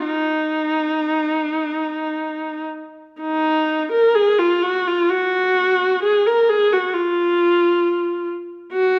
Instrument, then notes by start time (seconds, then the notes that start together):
viola
0.05 D#4
3.21 D#4
3.92 A#4
4.15 G#4
4.39 F4
4.63 F#4
4.87 F4
5.10 F#4
6.03 G#4
6.27 A#4
6.50 G#4
6.73 F#4
6.94 F4
8.73 F#4